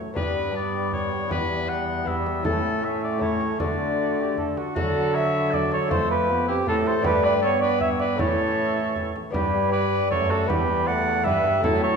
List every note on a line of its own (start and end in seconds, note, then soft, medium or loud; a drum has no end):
0.00 0.12 A3 soft
0.00 0.13 C#4 soft
0.00 0.14 E4 soft
0.14 0.53 G3 medium
0.14 0.50 B3 soft
0.14 0.52 B3 medium
0.14 0.51 D4 soft
0.14 0.52 G4 soft
0.14 0.52 B4 medium
0.14 frame drum medium
0.18 1.28 G2 soft
0.18 1.28 G2 medium
0.51 1.30 G3 medium
0.51 1.27 B3 soft
0.51 1.27 D4 soft
0.51 1.28 G4 soft
0.56 1.30 B3 medium
0.56 0.93 D5 medium
0.92 1.31 C#5 medium
0.92 frame drum soft
1.11 frame drum soft
1.28 2.47 E2 medium
1.28 2.42 E2 medium
1.28 2.06 G3 medium
1.28 2.03 B3 soft
1.28 2.04 E4 soft
1.28 2.05 G4 soft
1.28 1.71 B4 medium
1.28 frame drum medium
1.32 2.06 B3 medium
1.69 2.09 F#5 loud
2.04 2.47 G3 medium
2.04 2.42 B3 medium
2.04 2.43 E4 soft
2.04 2.44 G4 soft
2.04 2.45 E5 medium
2.04 frame drum medium
2.08 2.45 B3 medium
2.26 frame drum soft
2.43 3.60 A2 medium
2.43 3.57 A2 medium
2.43 2.82 A3 medium
2.43 3.17 C#4 soft
2.43 2.83 C#4 medium
2.43 3.18 E4 soft
2.43 3.19 A4 soft
2.43 2.86 A4 medium
2.43 frame drum medium
2.82 3.20 A3 medium
2.82 3.21 C#4 medium
2.82 3.03 E5 medium
3.04 3.22 D5 medium
3.19 3.59 A3 medium
3.19 3.58 C#4 soft
3.19 3.62 C#4 medium
3.19 3.58 E4 soft
3.19 3.59 A4 soft
3.19 3.60 C#5 medium
3.19 frame drum soft
3.41 frame drum soft
3.58 4.56 D3 medium
3.58 4.54 D3 soft
3.58 4.55 A3 medium
3.58 4.72 D4 soft
3.58 4.73 F#4 soft
3.58 3.95 F#4 medium
3.58 4.73 A4 soft
3.58 4.36 D5 medium
3.58 frame drum medium
4.00 4.17 F#4 medium
4.20 4.37 G4 medium
4.38 4.58 A4 medium
4.38 frame drum soft
4.57 4.75 F#4 medium
4.57 frame drum soft
4.74 5.87 D3 medium
4.74 5.88 D3 medium
4.74 4.95 F#3 medium
4.74 5.87 A3 soft
4.74 5.12 F#4 medium
4.74 5.87 F#4 medium
4.74 5.16 A4 medium
4.74 5.88 A4 medium
4.74 frame drum medium
4.97 5.53 F#3 medium
5.14 5.53 C#5 medium
5.14 5.55 E5 loud
5.51 5.93 F#3 medium
5.51 5.71 A4 medium
5.51 5.73 D5 medium
5.51 frame drum soft
5.71 5.90 A4 medium
5.71 5.91 C#5 loud
5.71 frame drum medium
5.88 6.63 F2 medium
5.88 7.00 A3 medium
5.88 6.32 A3 medium
5.88 7.00 F4 medium
5.88 6.09 A4 loud
5.88 7.01 A4 medium
5.88 6.10 C5 loud
5.88 frame drum medium
5.92 6.66 F2 medium
6.10 6.47 G4 medium
6.10 6.48 B4 loud
6.30 6.51 B3 medium
6.48 6.69 C4 medium
6.48 6.56 E4 medium
6.48 6.67 G4 medium
6.67 7.04 A2 medium
6.67 7.01 A2 medium
6.67 7.43 A3 medium
6.67 6.76 F4 medium
6.67 6.89 A4 loud
6.67 frame drum medium
6.86 7.07 A4 medium
6.86 7.05 C5 loud
6.86 frame drum medium
7.01 8.15 G2 medium
7.01 8.14 B3 medium
7.01 8.14 D4 medium
7.01 8.15 G4 medium
7.01 frame drum medium
7.05 8.21 G2 medium
7.05 7.26 G4 loud
7.05 7.24 B4 loud
7.24 7.41 B4 medium
7.24 7.33 D5 loud
7.42 8.18 B3 medium
7.42 7.51 A4 medium
7.42 7.61 C#5 loud
7.62 7.81 B4 medium
7.62 7.80 D5 loud
7.81 8.00 C#5 medium
7.81 7.89 E5 loud
7.81 frame drum soft
7.99 8.22 B4 medium
7.99 8.18 D5 medium
7.99 frame drum medium
8.16 9.11 A2 medium
8.16 9.29 A3 medium
8.16 9.30 C#4 soft
8.16 9.30 E4 medium
8.16 9.13 C#5 loud
8.16 frame drum medium
8.20 9.16 A2 medium
8.20 9.14 E3 medium
8.20 9.16 A4 medium
8.96 frame drum medium
9.16 frame drum soft
9.30 10.07 G2 medium
9.30 9.68 B3 soft
9.30 9.70 D4 soft
9.30 9.71 G4 medium
9.30 9.70 B4 medium
9.30 frame drum medium
9.35 10.07 G2 medium
9.35 9.52 G3 medium
9.35 9.70 G4 medium
9.55 10.11 G3 medium
9.69 10.44 B3 soft
9.69 10.46 D4 medium
9.69 10.46 G4 soft
9.69 10.10 D5 loud
9.73 10.10 B4 medium
10.11 10.45 F#2 medium
10.11 10.49 F#2 medium
10.11 10.52 A3 medium
10.11 10.29 A4 medium
10.11 10.32 C#5 loud
10.11 frame drum medium
10.30 10.51 F#4 medium
10.30 10.47 A4 medium
10.30 frame drum medium
10.46 11.21 E2 medium
10.46 11.21 B3 medium
10.46 11.22 E4 medium
10.46 11.23 G4 medium
10.46 10.89 G4 medium
10.46 10.89 B4 loud
10.46 frame drum medium
10.50 11.28 E2 medium
10.50 10.69 G3 medium
10.70 10.88 G3 medium
10.87 11.28 A3 medium
10.87 11.25 D5 loud
10.87 11.26 F#5 loud
11.23 11.63 G2 medium
11.23 11.60 G2 medium
11.23 11.66 G3 medium
11.23 11.60 B3 medium
11.23 11.60 E4 medium
11.23 11.62 G4 medium
11.23 11.63 E5 loud
11.23 frame drum medium
11.27 11.64 B4 medium
11.44 frame drum medium
11.60 11.96 A2 medium
11.60 11.96 F#3 medium
11.60 11.96 A3 medium
11.60 11.96 E4 medium
11.60 11.85 E4 loud
11.60 11.96 A4 medium
11.60 11.82 A4 loud
11.60 frame drum medium
11.64 11.96 A2 medium
11.83 11.96 A4 medium
11.83 11.96 C#5 loud